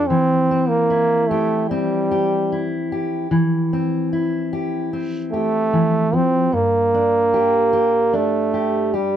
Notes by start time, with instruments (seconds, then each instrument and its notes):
Already playing: steel-string acoustic guitar C4
0.08 steel-string acoustic guitar E3, trombone C4
0.51 steel-string acoustic guitar C4
0.69 trombone A#3
0.90 steel-string acoustic guitar E4
1.28 trombone A3, steel-string acoustic guitar G4
1.69 trombone G3, steel-string acoustic guitar C4
2.11 steel-string acoustic guitar G4
2.52 steel-string acoustic guitar E4
2.92 steel-string acoustic guitar G4
3.31 steel-string acoustic guitar E3
3.73 steel-string acoustic guitar C4
4.13 steel-string acoustic guitar E4
4.53 steel-string acoustic guitar G4
4.93 steel-string acoustic guitar C4
5.32 trombone A3, steel-string acoustic guitar G4
5.73 steel-string acoustic guitar E3
6.13 steel-string acoustic guitar F3, trombone C4
6.52 steel-string acoustic guitar G2, trombone A#3
6.94 steel-string acoustic guitar D4
7.34 steel-string acoustic guitar G4
7.73 steel-string acoustic guitar G4
8.13 trombone A3, steel-string acoustic guitar D4
8.54 steel-string acoustic guitar G4
8.94 trombone G3, steel-string acoustic guitar G4